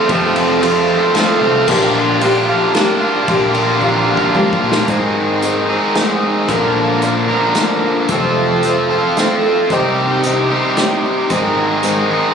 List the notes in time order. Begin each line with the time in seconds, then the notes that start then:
Already playing: F4
0.09 F2 C3 F3 A3 C4 F4 A4, kick, ride
0.35 A3 C4 F4, ride
0.61 F3 A3 C4 F4 A4, ride
0.89 A3 C4 F4
1.14 F3 A3 C4 A4, snare, ride
1.41 C2 A3 C4 F4
1.67 A#1 A#2 D3 F3 A#3 D4 F4 G4, kick, crash
1.95 A#3 D4 F4
2.21 A#2 D3 F3 A#3 D4 F4 G4, ride
2.48 A#3 D4 F4
2.74 F3 A#3 D4 G4, snare, ride
3.01 A#3 D4 F4
3.27 A#1 A#2 D3 F3 A#3 D4 F4 G4, kick, ride
3.55 A#3 D4 F4, ride
3.80 A#2 D3 F3 A#3 D4 F4 G4, kick
4.08 A#3 D4 F4
4.17 kick
4.34 F3 A#3 D4 G4, mid tom
4.53 kick
4.62 A#2 A#3 D4 F4
4.72 snare
4.87 G#2 D#3 G#3 C4 D#4 G#4 A#4, kick, closed hi-hat
5.42 G#3 C4 D#4 A#4, closed hi-hat
5.69 G#2 D#3 G#3 C4 D#4 G#4
5.95 G#3 C4 D#4 A#4, snare, closed hi-hat
6.48 A#1 A#2 D3 F3 A#3 D4 A#4, kick, closed hi-hat
7.02 F3 A#3 D4 A#4, closed hi-hat
7.29 A#2 D3 F3 A#3 D4 A#4
7.55 F3 A#3 D4, snare, closed hi-hat
7.60 A#4
8.08 F1 F2 C3 F3 A3 C4 F4 A4, kick, closed hi-hat
8.63 F3 A3 C4 A4, closed hi-hat
8.90 F3 A3 C4 F4 A4
9.17 F3 A3 C4 A4, snare, closed hi-hat
9.45 F3 A3 C4 A4
9.70 C2 C3 D#3 G3 C4 D#4 G4, kick, closed hi-hat
10.23 D#3 C4 D#4 G4, closed hi-hat
10.50 C3 G3 C4 D#4 G4
10.77 D#3 C4 D#4 G4, snare, closed hi-hat
11.04 C4 D#4 G4
11.30 G#1 G#2 D#3 G#3 C4 D#4 G#4 A#4, kick, closed hi-hat
11.82 G#3 C4 D#4 A#4, closed hi-hat
12.10 G#2 D#3 G#3 C4 D#4 G#4